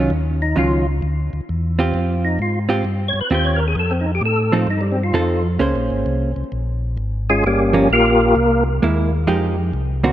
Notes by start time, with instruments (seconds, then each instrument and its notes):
Already playing: hollow-body jazz guitar F4
0.10 tonewheel organ D#2
0.42 tonewheel organ D#4
0.56 tonewheel organ C#2 F4, hollow-body jazz guitar D#3 F#3 C#4 F4
1.02 tonewheel organ D2
1.33 tonewheel organ D2
1.49 tonewheel organ E2
1.79 hollow-body jazz guitar C4 F4 G4
1.94 tonewheel organ F2
2.25 tonewheel organ D#4
2.39 tonewheel organ G#2 F4
2.69 hollow-body jazz guitar C4 F4 G4
2.85 tonewheel organ G2
3.08 tonewheel organ C#5
3.13 tonewheel organ G2
3.21 tonewheel organ B4
3.30 tonewheel organ D#2, hollow-body jazz guitar C4 F4 G4
3.34 tonewheel organ C5
3.45 tonewheel organ C#5
3.56 tonewheel organ A#4
3.68 tonewheel organ G#4
3.75 tonewheel organ F2
3.79 tonewheel organ A4
3.91 tonewheel organ C4
4.01 tonewheel organ D#4
4.15 tonewheel organ G4
4.21 tonewheel organ A2
4.26 tonewheel organ A4
4.52 hollow-body jazz guitar F3 C4 D#4 A4
4.58 tonewheel organ F4
4.67 tonewheel organ G2 D#4
4.81 tonewheel organ G3
4.92 tonewheel organ C4
5.04 tonewheel organ F4
5.13 tonewheel organ F2, hollow-body jazz guitar F3 C4 D#4 A4
5.59 tonewheel organ C#2, hollow-body jazz guitar A#3 C#4 G#4 C5
5.76 tonewheel organ A#1
5.90 tonewheel organ G#1
6.06 tonewheel organ C2
6.36 tonewheel organ C2
6.52 tonewheel organ A#1
6.97 tonewheel organ G#1
7.30 tonewheel organ G#3 C#4 F4 G#4
7.44 tonewheel organ G1 G3 A#3 C#4 G4
7.73 hollow-body jazz guitar F3 A#3 C#4
7.90 tonewheel organ A#1 A#3 F4 G4 A#4
8.36 tonewheel organ C2
8.82 tonewheel organ D#2, hollow-body jazz guitar G#3 A#3 E4
9.27 tonewheel organ F2, hollow-body jazz guitar F3 G#3 D#4 G4
9.73 tonewheel organ C2
10.04 hollow-body jazz guitar D3 A#3 C4 F#4